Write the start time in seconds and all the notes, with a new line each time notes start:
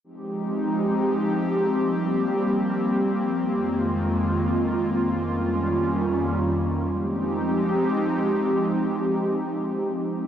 0.04 F3 G#3 C4 D#4 G4
1.76 G3 A#3
3.47 F2 D#3 G#3 F4
5.19 F2 D#3 G3 C#4
6.90 F3 G#3 C4 D#4 G4